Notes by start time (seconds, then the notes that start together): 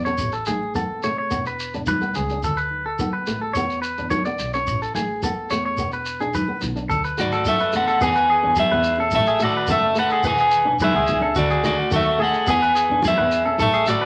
Already playing: E2
0.05 C#4 C#5, shekere
0.18 A1, muted conga, shekere
0.32 A4, shekere
0.46 A3 G#4, muted conga, high conga, shekere
0.75 B3 A4, high conga, shekere
1.03 F1 A3 C#5, muted conga, shekere
1.18 C#5
1.30 E1 B3, muted conga, shekere
1.46 B4, shekere
1.60 shekere
1.74 E1 D4, shekere
1.86 B4, high conga, shekere
2.01 B3, shekere
2.15 C#2 G#4, shekere
2.29 D4, shekere
2.43 D2 A4, muted conga, shekere
2.57 B4, shekere
2.71 muted conga
2.86 A4
2.99 B3, high conga, low conga, shekere
3.13 B4
3.27 A1 A3, muted conga, shekere
3.42 A4
3.53 E2 B3 C#5, muted conga, shekere
3.70 shekere
3.82 B4, shekere
3.97 E2 D4, shekere
4.10 C#5, high conga, shekere
4.25 B3 D5, shekere
4.39 B1, shekere
4.54 C#4 C#5, shekere
4.67 A1, muted conga, shekere
4.82 A4, shekere
4.95 A3 G#4, muted conga, high conga, shekere
5.23 B3 A4, high conga, shekere
5.50 E2 A3 C#5, shekere
5.65 C#5
5.77 E1 B3, muted conga, shekere
5.92 B4, shekere
6.06 shekere
6.20 E1 D4 G#4, shekere
6.34 B4, high conga, shekere
6.48 B3
6.61 B1, low conga, shekere
6.76 D4, shekere
6.89 D2 A4, muted conga, shekere
7.04 B4, shekere
7.17 G#2 A3 F#4 D5, muted conga, high conga, shekere
7.32 A4, shekere
7.45 F#2 B3 A4 E5, high conga, low conga, shekere
7.60 B4, shekere
7.72 E2 A3 A4, muted conga, shekere
7.77 F#5
7.87 A4, shekere
8.01 E2 B3 G#4 B4 G#5, muted conga, shekere
8.15 B4, shekere
8.30 G#4
8.43 E2 D4
8.56 G#4 E5, high conga, shekere
8.71 E2 B3 B4
8.83 muted conga, shekere
8.98 C#4 A4
9.11 A1 A4, muted conga, high conga, shekere
9.15 E5
9.26 G#4, shekere
9.39 A2 A3 F#4 A4, muted conga, shekere
9.45 D5
9.57 B4
9.67 F#1 B3 A4, high conga, shekere
9.72 E5
9.95 A3 A4 B4, shekere
10.00 F#5
10.10 G#4, shekere
10.23 E1 B4 G#5, muted steel-string acoustic guitar stroke, muted conga, shekere
10.38 G#4, shekere
10.51 shekere
10.65 E1 D4
10.79 G#4 B4, high conga, shekere
10.84 E5
10.94 C#2 B3 G#4
11.07 muted conga, high conga, low conga, shekere
11.21 D4 A4
11.35 D2 F#4 D5, muted conga, shekere
11.50 G#4, shekere
11.63 D3 A3 F#4 D5, muted conga, low conga, shekere
11.91 D#2 B3 F#4 A4, high conga, shekere
11.96 E5
12.19 A3 G#4 A4
12.24 F#5
12.34 shekere
12.47 E2 B3 G#4 B4 G#5, muted conga, shekere
12.62 B4, shekere
12.75 G#4, shekere
12.89 E2 D4
13.02 G#4, high conga, shekere
13.08 E5
13.18 E2 B3 B4
13.30 muted conga, shekere
13.45 C#4 A4
13.58 A1 A4 E5, muted conga, high conga, shekere
13.73 G#4, shekere
13.86 A2 A3 F#4 A4, muted conga, shekere
13.90 D5
14.01 B4